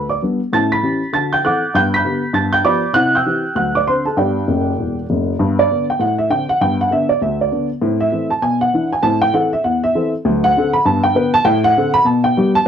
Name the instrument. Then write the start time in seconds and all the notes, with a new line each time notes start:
upright piano
Already playing: D2
0.09 D5 D6
0.22 G3 B3 D4
0.53 A2 C#4 A5 A6
0.72 B5 B6
0.83 E3 C#4 G4
1.13 D3 F#4 A5 A6
1.33 G5 G6
1.44 E3 C4 A4 F#5 D6 F#6
1.74 G2 B3 G5 G6
1.94 B5 G6 B6
2.05 D3 B3 G4
2.33 G2 B3 A5 A6
2.53 G5 G6
2.64 F3 B3 G4 D5 B5 D6
2.93 C3 E4 F#5 F#6
3.15 G5 E6 G6
3.26 E3 C4 G4
3.55 D2 F#3 F#5 F#6
3.75 D5 D6
3.87 D3 C4 D4 C5 C6
4.06 A4 A5
4.17 G2 B3 G4 D5 G5
4.48 F#1 F#2
4.78 E1 E2
5.10 F#1 F#2
5.39 G2 B3
5.59 D5
5.71 D3 B3 D4
5.90 G5
5.99 A2 F#5
6.18 E5
6.30 D3 C4 D4 G5
6.49 F#5
6.61 G2 B3 G5
6.81 F#5
6.91 D3 B3 D4 E5
7.09 D5
7.22 D2 E5
7.41 D5
7.51 D3 B3 D4
7.82 A2 C4
8.00 E5
8.12 E3 A3 C4
8.30 A5
8.42 B2 G#5
8.61 F#5
8.73 E3 D4 E4
8.93 G#5
9.03 A2 C4 A5
9.22 G5
9.33 E3 C4 A4 F#5
9.53 E5
9.64 E2 F#5
9.84 E5
9.95 E3 C4 A4
10.25 D2 F#3
10.44 F#5
10.57 D3 C4 A4
10.73 B5
10.85 G2 B3 A5
11.03 G5
11.15 D3 B3 B4
11.34 A5
11.45 A2 G5
11.64 F#5
11.77 D3 C4 A4
11.94 B5
12.05 B2 A5
12.24 G5
12.37 G3 B3 G4
12.55 A5